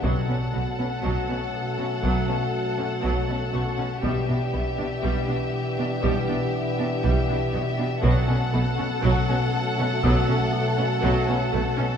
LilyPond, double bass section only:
\new Staff \with { instrumentName = "Double bass section" } { \clef bass \time 4/4 \key fis \phrygian \tempo 4 = 60 b,,16 r16 b,,16 r16 b,,16 r8. b,,16 r8. b,,16 r16 b,,16 r16 | b,,16 r16 b,,16 r16 b,,16 r8. b,,16 r8. b,,16 r16 b,,16 r16 | b,,16 r16 b,,16 r16 b,,16 r8. b,,16 r8. b,,16 r16 b,,16 r16 | }